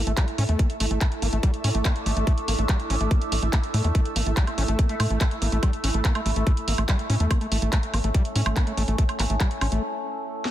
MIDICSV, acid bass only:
0, 0, Header, 1, 2, 480
1, 0, Start_track
1, 0, Key_signature, 3, "major"
1, 0, Tempo, 419580
1, 678, Time_signature, 4, 2, 24, 8
1, 12022, End_track
2, 0, Start_track
2, 0, Title_t, "Acid bass"
2, 0, Program_c, 0, 38
2, 78, Note_on_c, 0, 57, 78
2, 142, Note_off_c, 0, 57, 0
2, 198, Note_on_c, 0, 55, 106
2, 293, Note_off_c, 0, 55, 0
2, 438, Note_on_c, 0, 61, 102
2, 502, Note_off_c, 0, 61, 0
2, 558, Note_on_c, 0, 57, 76
2, 678, Note_on_c, 0, 58, 102
2, 695, Note_off_c, 0, 57, 0
2, 773, Note_off_c, 0, 58, 0
2, 918, Note_on_c, 0, 57, 106
2, 981, Note_off_c, 0, 57, 0
2, 1038, Note_on_c, 0, 57, 76
2, 1133, Note_off_c, 0, 57, 0
2, 1158, Note_on_c, 0, 57, 104
2, 1222, Note_off_c, 0, 57, 0
2, 1398, Note_on_c, 0, 58, 78
2, 1462, Note_off_c, 0, 58, 0
2, 1518, Note_on_c, 0, 57, 76
2, 1581, Note_off_c, 0, 57, 0
2, 1638, Note_on_c, 0, 55, 103
2, 1733, Note_off_c, 0, 55, 0
2, 1878, Note_on_c, 0, 61, 101
2, 1941, Note_off_c, 0, 61, 0
2, 1998, Note_on_c, 0, 57, 76
2, 2118, Note_on_c, 0, 58, 104
2, 2135, Note_off_c, 0, 57, 0
2, 2213, Note_off_c, 0, 58, 0
2, 2358, Note_on_c, 0, 57, 105
2, 2422, Note_off_c, 0, 57, 0
2, 2478, Note_on_c, 0, 57, 75
2, 2573, Note_off_c, 0, 57, 0
2, 2598, Note_on_c, 0, 57, 102
2, 2662, Note_off_c, 0, 57, 0
2, 2838, Note_on_c, 0, 58, 80
2, 2902, Note_off_c, 0, 58, 0
2, 2958, Note_on_c, 0, 57, 78
2, 3022, Note_off_c, 0, 57, 0
2, 3078, Note_on_c, 0, 55, 104
2, 3173, Note_off_c, 0, 55, 0
2, 3318, Note_on_c, 0, 61, 105
2, 3382, Note_off_c, 0, 61, 0
2, 3438, Note_on_c, 0, 57, 78
2, 3559, Note_on_c, 0, 58, 101
2, 3576, Note_off_c, 0, 57, 0
2, 3654, Note_off_c, 0, 58, 0
2, 3799, Note_on_c, 0, 57, 76
2, 3837, Note_off_c, 0, 57, 0
2, 3919, Note_on_c, 0, 57, 79
2, 3982, Note_off_c, 0, 57, 0
2, 4039, Note_on_c, 0, 57, 100
2, 4102, Note_off_c, 0, 57, 0
2, 4278, Note_on_c, 0, 57, 81
2, 4374, Note_off_c, 0, 57, 0
2, 4398, Note_on_c, 0, 57, 77
2, 4436, Note_off_c, 0, 57, 0
2, 4518, Note_on_c, 0, 57, 101
2, 4582, Note_off_c, 0, 57, 0
2, 4758, Note_on_c, 0, 58, 79
2, 4822, Note_off_c, 0, 58, 0
2, 4879, Note_on_c, 0, 57, 80
2, 4942, Note_off_c, 0, 57, 0
2, 4999, Note_on_c, 0, 55, 105
2, 5094, Note_off_c, 0, 55, 0
2, 5239, Note_on_c, 0, 61, 101
2, 5302, Note_off_c, 0, 61, 0
2, 5359, Note_on_c, 0, 57, 77
2, 5479, Note_on_c, 0, 58, 104
2, 5496, Note_off_c, 0, 57, 0
2, 5574, Note_off_c, 0, 58, 0
2, 5598, Note_on_c, 0, 57, 80
2, 5662, Note_off_c, 0, 57, 0
2, 5718, Note_on_c, 0, 57, 100
2, 5782, Note_off_c, 0, 57, 0
2, 5838, Note_on_c, 0, 57, 76
2, 5933, Note_off_c, 0, 57, 0
2, 5958, Note_on_c, 0, 57, 100
2, 6022, Note_off_c, 0, 57, 0
2, 6198, Note_on_c, 0, 58, 79
2, 6262, Note_off_c, 0, 58, 0
2, 6318, Note_on_c, 0, 57, 76
2, 6382, Note_off_c, 0, 57, 0
2, 6438, Note_on_c, 0, 55, 104
2, 6534, Note_off_c, 0, 55, 0
2, 6678, Note_on_c, 0, 61, 105
2, 6742, Note_off_c, 0, 61, 0
2, 6799, Note_on_c, 0, 57, 76
2, 6918, Note_on_c, 0, 58, 103
2, 6935, Note_off_c, 0, 57, 0
2, 7013, Note_off_c, 0, 58, 0
2, 7038, Note_on_c, 0, 57, 81
2, 7102, Note_off_c, 0, 57, 0
2, 7158, Note_on_c, 0, 57, 105
2, 7222, Note_off_c, 0, 57, 0
2, 7278, Note_on_c, 0, 57, 79
2, 7373, Note_off_c, 0, 57, 0
2, 7398, Note_on_c, 0, 57, 107
2, 7462, Note_off_c, 0, 57, 0
2, 7638, Note_on_c, 0, 58, 77
2, 7702, Note_off_c, 0, 58, 0
2, 7758, Note_on_c, 0, 57, 76
2, 7822, Note_off_c, 0, 57, 0
2, 7878, Note_on_c, 0, 55, 104
2, 7973, Note_off_c, 0, 55, 0
2, 8118, Note_on_c, 0, 61, 108
2, 8182, Note_off_c, 0, 61, 0
2, 8238, Note_on_c, 0, 57, 78
2, 8358, Note_on_c, 0, 58, 104
2, 8375, Note_off_c, 0, 57, 0
2, 8453, Note_off_c, 0, 58, 0
2, 8479, Note_on_c, 0, 57, 77
2, 8542, Note_off_c, 0, 57, 0
2, 8598, Note_on_c, 0, 57, 106
2, 8662, Note_off_c, 0, 57, 0
2, 8718, Note_on_c, 0, 57, 80
2, 8813, Note_off_c, 0, 57, 0
2, 8839, Note_on_c, 0, 57, 105
2, 8902, Note_off_c, 0, 57, 0
2, 9079, Note_on_c, 0, 58, 78
2, 9142, Note_off_c, 0, 58, 0
2, 9198, Note_on_c, 0, 57, 77
2, 9262, Note_off_c, 0, 57, 0
2, 9319, Note_on_c, 0, 55, 105
2, 9414, Note_off_c, 0, 55, 0
2, 9558, Note_on_c, 0, 61, 103
2, 9622, Note_off_c, 0, 61, 0
2, 9679, Note_on_c, 0, 57, 79
2, 9798, Note_on_c, 0, 58, 105
2, 9816, Note_off_c, 0, 57, 0
2, 9894, Note_off_c, 0, 58, 0
2, 9918, Note_on_c, 0, 57, 75
2, 9982, Note_off_c, 0, 57, 0
2, 10038, Note_on_c, 0, 57, 105
2, 10102, Note_off_c, 0, 57, 0
2, 10158, Note_on_c, 0, 57, 74
2, 10254, Note_off_c, 0, 57, 0
2, 10279, Note_on_c, 0, 57, 100
2, 10342, Note_off_c, 0, 57, 0
2, 10518, Note_on_c, 0, 58, 79
2, 10582, Note_off_c, 0, 58, 0
2, 10638, Note_on_c, 0, 57, 77
2, 10702, Note_off_c, 0, 57, 0
2, 10758, Note_on_c, 0, 55, 105
2, 10853, Note_off_c, 0, 55, 0
2, 10999, Note_on_c, 0, 61, 105
2, 11062, Note_off_c, 0, 61, 0
2, 11119, Note_on_c, 0, 57, 79
2, 11238, Note_off_c, 0, 57, 0
2, 12022, End_track
0, 0, End_of_file